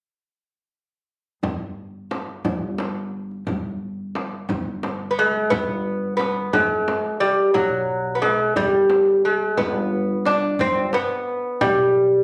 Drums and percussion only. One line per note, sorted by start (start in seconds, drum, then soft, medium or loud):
1.43 tombak dum medium
1.43 frame drum medium
2.11 tombak tek medium
2.11 frame drum medium
2.45 frame drum medium
2.45 tombak dum medium
2.78 tombak tek medium
2.78 frame drum medium
3.31 tombak ka soft
3.47 frame drum medium
3.47 tombak dum medium
4.15 tombak tek medium
4.15 frame drum medium
4.49 frame drum medium
4.49 tombak dum medium
4.83 tombak tek medium
4.83 frame drum medium
5.36 tombak ka soft
5.52 frame drum medium
5.52 tombak dum medium
6.20 tombak tek medium
6.20 frame drum medium
6.53 frame drum medium
6.53 tombak dum medium
6.88 tombak tek medium
6.88 frame drum medium
7.23 tombak ka soft
7.55 frame drum medium
7.55 tombak dum medium
8.22 tombak tek medium
8.22 frame drum medium
8.56 frame drum medium
8.56 tombak dum medium
8.90 tombak tek medium
8.90 frame drum medium
9.24 tombak ka soft
9.57 frame drum medium
9.57 tombak dum medium
10.26 tombak tek medium
10.26 frame drum medium
10.59 frame drum medium
10.59 tombak dum medium
10.93 tombak tek medium
10.93 frame drum medium
11.29 tombak ka soft
11.61 frame drum medium
11.61 tombak dum medium